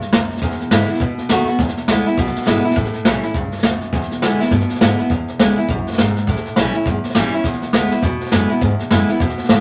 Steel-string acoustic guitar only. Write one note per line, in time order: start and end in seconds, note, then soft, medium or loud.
0.00 0.12 G2 loud
0.14 0.42 F#2 medium
0.42 0.99 E2 medium
0.72 0.89 D3 medium
0.72 0.89 G#3 medium
0.72 0.89 B3 medium
0.72 0.89 E4 loud
0.90 1.02 B3 soft
0.90 1.01 E4 medium
1.01 1.57 B2 loud
1.29 1.47 D#3 medium
1.29 1.47 A3 medium
1.29 1.47 B3 medium
1.29 1.47 F#4 loud
1.48 1.60 B3 medium
1.48 1.59 F#4 medium
1.60 2.16 E2 medium
1.89 2.06 D3 medium
1.89 2.06 G#3 medium
1.89 2.07 B3 medium
1.89 2.05 E4 loud
2.06 2.19 B3 soft
2.06 2.18 E4 medium
2.19 2.75 B2 loud
2.46 2.64 D3 loud
2.46 2.64 G#3 medium
2.46 2.64 B3 loud
2.46 2.63 E4 loud
2.65 2.77 B3 soft
2.65 2.76 E4 medium
2.76 3.32 A2 loud
3.05 3.23 E3 medium
3.05 3.23 G3 medium
3.05 3.23 C#4 medium
3.05 3.22 E4 medium
3.23 3.36 C#4 medium
3.23 3.35 E4 medium
3.36 3.63 G2 medium
3.65 3.93 F#2 medium
3.94 4.50 E2 medium
4.22 4.40 D3 medium
4.22 4.40 G#3 medium
4.22 4.40 B3 loud
4.22 4.39 E4 loud
4.40 4.53 B3 medium
4.40 4.51 E4 medium
4.52 5.08 B2 loud
4.81 4.98 D3 medium
4.81 4.99 G#3 medium
4.81 4.99 B3 loud
4.81 4.98 E4 loud
4.99 5.11 B3 medium
4.99 5.10 E4 medium
5.11 5.67 E2 medium
5.40 5.57 D3 medium
5.40 5.58 G#3 medium
5.40 5.58 B3 medium
5.40 5.56 E4 medium
5.58 5.70 B3 soft
5.58 5.69 E4 medium
5.70 5.98 F#2 loud
5.99 6.27 G#2 medium
6.29 6.84 A2 medium
6.57 6.74 E3 medium
6.57 6.75 G3 medium
6.57 6.75 C#4 medium
6.57 6.74 E4 medium
6.75 6.87 C#4 soft
6.75 6.86 E4 medium
6.87 7.43 E2 loud
7.15 7.33 E3 medium
7.15 7.33 G3 loud
7.15 7.33 C#4 medium
7.15 7.32 E4 loud
7.34 7.46 C#4 medium
7.34 7.45 E4 medium
7.45 8.01 E2 medium
7.74 7.91 D3 medium
7.74 7.92 G#3 loud
7.74 7.92 B3 loud
7.74 7.90 E4 loud
7.91 8.04 B3 soft
7.91 8.03 E4 medium
8.04 8.60 B2 loud
8.32 8.49 D3 medium
8.32 8.50 G#3 medium
8.32 8.50 B3 loud
8.32 8.48 E4 medium
8.50 8.62 B3 medium
8.50 8.61 E4 medium
8.62 9.18 E2 loud
8.91 9.08 D3 medium
8.91 9.09 G#3 loud
8.91 9.09 B3 loud
8.91 9.08 E4 medium
9.09 9.21 B3 medium
9.09 9.20 E4 medium
9.21 9.60 B2 loud
9.50 9.60 D3 loud
9.50 9.60 G#3 medium
9.50 9.60 B3 loud
9.50 9.60 E4 loud